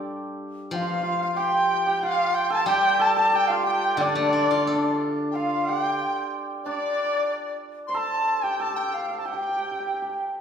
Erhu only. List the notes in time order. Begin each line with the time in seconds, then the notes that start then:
0.74 F5
1.37 G5
2.03 F5
2.35 G5
2.52 A5
2.68 G5
3.02 A5
3.19 A5
3.35 G5
3.52 F5
3.68 G5
4.01 D5
5.34 F5
5.68 G5
6.67 D5
7.90 C6
7.97 A5
8.44 G5
8.62 A5
8.76 G5
8.94 F5
9.20 A5
9.26 G5